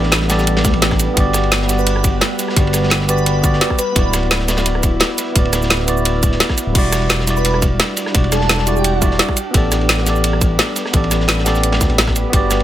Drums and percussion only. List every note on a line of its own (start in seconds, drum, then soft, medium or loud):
0.03 snare soft
0.12 snare loud
0.12 closed hi-hat medium
0.12 ride medium
0.21 snare medium
0.30 snare loud
0.30 closed hi-hat medium
0.30 ride medium
0.30 shaker medium
0.39 snare medium
0.39 shaker soft
0.47 closed hi-hat medium
0.47 ride medium
0.57 snare loud
0.57 ride medium
0.64 kick loud
0.64 snare medium
0.64 closed hi-hat medium
0.64 shaker medium
0.73 ride medium
0.82 snare loud
0.82 closed hi-hat medium
0.82 ride medium
0.91 kick medium
0.91 cross-stick soft
0.91 snare medium
0.99 closed hi-hat medium
0.99 ride medium
0.99 shaker medium
1.17 kick loud
1.17 closed hi-hat medium
1.17 ride medium
1.33 cross-stick soft
1.33 snare soft
1.33 closed hi-hat medium
1.33 ride medium
1.33 shaker medium
1.43 ride soft
1.52 snare loud
1.52 closed hi-hat medium
1.52 ride medium
1.62 snare medium
1.69 snare soft
1.69 closed hi-hat medium
1.69 ride medium
1.69 shaker medium
1.78 shaker soft
1.87 closed hi-hat medium
1.87 ride medium
1.96 cross-stick medium
2.04 kick loud
2.04 closed hi-hat medium
2.04 ride medium
2.04 shaker medium
2.21 snare loud
2.21 closed hi-hat medium
2.21 ride medium
2.39 snare soft
2.39 closed hi-hat medium
2.39 ride medium
2.39 shaker medium
2.48 cross-stick medium
2.48 snare soft
2.56 kick loud
2.56 closed hi-hat loud
2.56 ride medium
2.67 ride soft
2.73 cross-stick soft
2.73 snare soft
2.73 closed hi-hat medium
2.73 ride medium
2.73 shaker medium
2.83 snare soft
2.90 snare loud
2.90 closed hi-hat medium
2.90 ride medium
3.01 snare medium
3.08 closed hi-hat medium
3.08 ride medium
3.08 shaker medium
3.18 shaker soft
3.26 closed hi-hat medium
3.26 ride medium
3.44 kick loud
3.44 closed hi-hat medium
3.44 ride medium
3.44 shaker medium
3.53 snare soft
3.61 snare loud
3.61 closed hi-hat medium
3.61 ride medium
3.70 kick medium
3.70 cross-stick soft
3.79 closed hi-hat medium
3.79 ride medium
3.79 shaker medium
3.96 kick loud
3.96 closed hi-hat loud
3.96 ride medium
4.13 cross-stick soft
4.13 snare soft
4.13 closed hi-hat medium
4.13 ride medium
4.13 shaker medium
4.23 ride soft
4.31 snare loud
4.31 closed hi-hat loud
4.31 ride medium
4.40 snare medium
4.48 snare loud
4.48 closed hi-hat medium
4.48 ride medium
4.48 shaker medium
4.57 snare loud
4.57 ride medium
4.57 shaker soft
4.66 closed hi-hat medium
4.66 ride medium
4.75 cross-stick medium
4.83 kick loud
4.83 closed hi-hat medium
4.83 ride medium
4.83 shaker medium
5.00 snare loud
5.00 closed hi-hat medium
5.00 ride medium
5.18 snare soft
5.18 closed hi-hat medium
5.18 ride medium
5.18 shaker medium
5.35 kick loud
5.35 closed hi-hat loud
5.35 ride medium
5.45 ride soft
5.53 cross-stick medium
5.53 snare soft
5.53 closed hi-hat medium
5.53 ride medium
5.53 shaker medium
5.62 snare soft
5.62 shaker soft
5.70 snare loud
5.70 closed hi-hat loud
5.70 ride medium
5.80 snare soft
5.88 closed hi-hat medium
5.88 ride medium
5.88 shaker medium
5.97 shaker soft
6.05 closed hi-hat medium
6.05 ride medium
6.23 kick loud
6.23 closed hi-hat medium
6.23 ride medium
6.23 shaker medium
6.32 snare soft
6.40 snare loud
6.40 closed hi-hat medium
6.40 ride medium
6.49 kick medium
6.49 cross-stick soft
6.49 snare medium
6.58 closed hi-hat medium
6.58 ride medium
6.58 shaker medium
6.75 kick loud
6.75 closed hi-hat loud
6.75 crash medium
6.75 ride medium
6.92 cross-stick medium
6.92 snare soft
6.92 closed hi-hat medium
6.92 ride medium
6.92 shaker medium
7.02 ride soft
7.09 snare loud
7.09 closed hi-hat medium
7.09 ride medium
7.20 snare medium
7.27 snare soft
7.27 closed hi-hat medium
7.27 ride medium
7.27 shaker medium
7.37 shaker soft
7.45 closed hi-hat loud
7.45 ride loud
7.54 cross-stick medium
7.62 kick loud
7.62 closed hi-hat medium
7.62 ride medium
7.62 shaker medium
7.80 snare loud
7.80 closed hi-hat medium
7.80 ride medium
7.97 snare soft
7.97 closed hi-hat medium
7.97 ride medium
7.97 shaker medium
8.06 cross-stick medium
8.06 snare soft
8.15 kick loud
8.15 closed hi-hat loud
8.15 ride medium
8.24 ride soft
8.32 cross-stick soft
8.32 snare soft
8.32 closed hi-hat medium
8.32 ride medium
8.32 shaker medium
8.41 snare soft
8.49 snare loud
8.49 closed hi-hat loud
8.49 ride medium
8.58 snare medium
8.67 closed hi-hat medium
8.67 ride medium
8.67 shaker medium
8.76 shaker soft
8.84 closed hi-hat medium
8.84 ride medium
9.02 kick loud
9.02 closed hi-hat medium
9.02 ride medium
9.02 shaker medium
9.11 snare soft
9.19 snare loud
9.19 closed hi-hat medium
9.19 ride medium
9.29 kick medium
9.29 cross-stick soft
9.36 closed hi-hat medium
9.36 ride medium
9.36 shaker medium
9.54 kick loud
9.54 closed hi-hat medium
9.54 ride medium
9.72 cross-stick medium
9.72 snare soft
9.72 closed hi-hat medium
9.72 ride medium
9.72 shaker medium
9.81 ride soft
9.89 snare loud
9.89 closed hi-hat medium
9.89 ride medium
9.98 snare medium
10.06 snare medium
10.06 closed hi-hat medium
10.06 ride medium
10.06 shaker medium
10.16 shaker soft
10.24 closed hi-hat medium
10.24 ride medium
10.33 cross-stick medium
10.41 kick loud
10.41 closed hi-hat medium
10.41 ride medium
10.41 shaker medium
10.59 snare loud
10.59 closed hi-hat medium
10.59 ride medium
10.76 snare soft
10.76 closed hi-hat medium
10.76 ride medium
10.76 shaker medium
10.86 cross-stick medium
10.86 snare soft
10.93 kick loud
10.93 closed hi-hat medium
10.93 ride medium
11.04 ride soft
11.11 cross-stick soft
11.11 snare soft
11.11 closed hi-hat medium
11.11 ride medium
11.11 shaker medium
11.20 snare soft
11.28 snare loud
11.28 closed hi-hat medium
11.28 ride medium
11.38 snare medium
11.46 snare loud
11.46 closed hi-hat medium
11.46 ride medium
11.46 shaker medium
11.55 snare soft
11.55 shaker soft
11.63 closed hi-hat medium
11.63 ride medium
11.72 snare loud
11.72 ride medium
11.81 kick loud
11.81 snare soft
11.81 closed hi-hat medium
11.81 shaker medium
11.90 ride medium
11.98 snare loud
11.98 closed hi-hat medium
11.98 ride medium
12.07 kick medium
12.07 cross-stick soft
12.07 snare medium
12.16 closed hi-hat medium
12.16 ride medium
12.16 shaker medium
12.33 kick loud
12.33 closed hi-hat medium
12.33 ride medium
12.51 cross-stick soft
12.51 snare soft
12.51 closed hi-hat medium
12.51 ride medium
12.51 shaker medium
12.60 ride soft